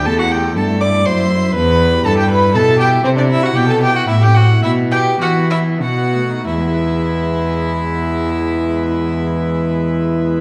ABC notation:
X:1
M:3/4
L:1/16
Q:1/4=108
K:Em
V:1 name="Violin"
a f g2 a2 d'2 c'4 | b4 a g b2 a2 g2 | c d e f g a g f e g f2 | e2 g2 f2 e2 f4 |
e12- | e12 |]
V:2 name="Violin"
A F G2 A2 d2 c4 | B4 A G B2 A2 G2 | C D E F G A G F E G F2 | E2 G2 F2 E2 F4 |
E12- | E12 |]
V:3 name="Pipe organ"
z E A, A E A, E A, E e E e | z E2 G E2 E2 E e E e | z E2 E2 C E2 z C2 E | z E B, G E B, E B, z B, A, ^D |
[E,^G,B,EB]12- | [E,^G,B,EB]12 |]
V:4 name="Pipe organ" clef=bass
E,,4 G,,4 F,,4 | E,,4 G,,4 B,,4 | C,4 B,,4 A,,4 | B,,4 E,4 B,,4 |
z12 | z12 |]
V:5 name="Cello" clef=bass
E,,4 G,,4 F,,4 | E,,4 G,,4 B,,4 | C,4 B,,4 A,,4 | B,,4 E,4 B,,4 |
E,,12- | E,,12 |]